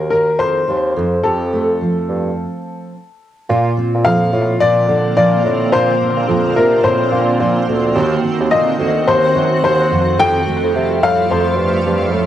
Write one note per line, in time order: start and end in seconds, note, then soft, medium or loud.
0.00 0.30 D#2 medium
0.00 0.12 D#3 medium
0.00 0.66 A#3 medium
0.00 1.04 F#4 medium
0.10 1.04 D#3 medium
0.10 0.37 A#4 medium
0.39 0.63 F2 medium
0.39 2.94 C4 medium
0.39 1.20 C5 loud
0.68 0.92 D#2 medium
0.68 1.03 A#3 medium
0.96 1.19 F2 medium
0.96 1.23 F2 medium
1.23 2.43 F2 medium
1.23 1.82 F2 loud
1.23 2.44 G4 medium
1.23 2.88 A4 medium
1.53 2.44 A3 medium
1.81 2.94 F3 medium
2.09 2.32 G2 medium
3.49 3.72 A#2 loud
3.49 4.60 A#2 medium
3.49 7.92 D3 medium
3.49 7.91 A#3 medium
3.49 9.87 C4 medium
3.49 4.32 F4 medium
3.77 5.45 C4 medium
3.94 4.03 A#2 medium
4.05 4.28 F2 medium
4.05 5.16 F3 medium
4.05 4.62 F5 loud
4.33 4.56 A2 loud
4.33 5.73 F4 medium
4.60 4.84 A#2 medium
4.60 5.72 A#2 medium
4.60 5.15 D5 loud
4.88 5.12 D3 medium
4.88 7.11 D4 medium
5.17 5.40 A#2 loud
5.17 6.28 F3 medium
5.17 5.69 D5 medium
5.44 5.67 A2 medium
5.44 6.01 C4 medium
5.72 5.95 A#2 loud
5.72 6.82 A#2 medium
5.72 6.56 F4 medium
5.72 6.52 C5 loud
6.01 7.67 C4 medium
6.17 6.26 A#2 medium
6.28 6.51 F2 medium
6.28 7.39 F3 medium
6.56 6.79 C3 medium
6.56 7.96 F4 medium
6.56 6.85 A#4 medium
6.83 7.07 A2 medium
6.83 8.02 A#2 medium
6.83 7.64 C5 medium
7.12 7.35 A#2 loud
7.12 8.02 D4 medium
7.40 7.63 A#2 loud
7.40 7.95 F3 medium
7.67 7.91 D2 medium
7.67 8.23 C4 medium
7.95 8.18 D#2 loud
7.95 9.06 D#3 medium
7.95 9.89 D#3 medium
7.95 9.89 F#4 medium
7.95 8.78 F#4 medium
8.24 8.51 A#3 medium
8.40 8.49 D#2 loud
8.51 8.74 A#2 medium
8.51 9.61 A#3 medium
8.51 9.08 D#5 medium
8.79 9.02 D2 medium
8.79 9.97 F#4 medium
9.07 9.30 D#2 medium
9.07 9.97 D#3 medium
9.07 9.62 C5 medium
9.35 9.58 F#2 medium
9.35 11.57 C4 medium
9.62 9.86 D#2 loud
9.62 9.97 A#3 medium
9.62 10.21 C5 medium
9.90 10.18 F2 medium
9.90 12.26 G3 medium
9.90 12.26 A3 medium
9.90 12.26 F4 medium
10.19 10.41 F2 loud
10.19 11.28 F2 medium
10.19 11.00 G4 medium
10.19 11.05 G5 loud
10.46 12.12 A3 medium
10.63 10.72 F2 medium
10.73 10.97 C3 medium
10.73 11.85 F3 medium
11.01 11.25 A2 medium
11.01 12.26 G4 medium
11.01 11.31 F5 loud
11.29 12.26 F2 medium
11.29 11.60 F2 medium
11.29 12.10 C5 medium
11.57 11.81 G2 medium
11.57 12.26 C4 medium
11.85 12.14 G2 medium
11.85 12.26 F3 medium
12.13 12.26 A2 medium
12.13 12.26 A3 medium